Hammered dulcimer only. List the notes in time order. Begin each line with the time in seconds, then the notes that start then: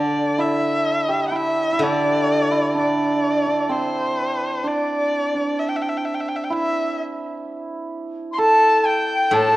Already playing: D4
0.38 E4
1.09 G4
1.32 E4
1.72 E4
1.82 D4
2.51 E4
2.75 D4
3.46 D4
3.69 C4
4.64 D4
5.34 D4
6.50 E4
8.38 A4
9.33 A4
9.41 A4
9.48 A4